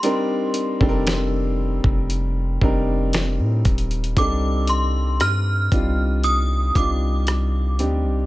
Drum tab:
HH |x---x---x-------x-------x---xxxx|x---x---x---x---x---x---x---x---|
SD |--------o---------------o-------|--------r---------------r-------|
BD |------o-------o-----o-------o---|o-----------o-------o-----------|